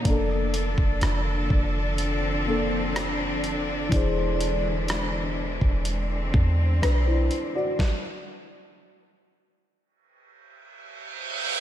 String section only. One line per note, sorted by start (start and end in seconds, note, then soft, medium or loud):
0.00 1.95 A#3 medium
0.05 7.75 D3 medium
0.05 3.88 F3 medium
0.05 7.75 D4 medium
0.05 3.88 A4 medium
1.99 3.90 C4 medium
3.92 5.84 B2 medium
3.92 7.75 E3 medium
3.92 7.75 G#3 medium
5.86 7.77 C4 medium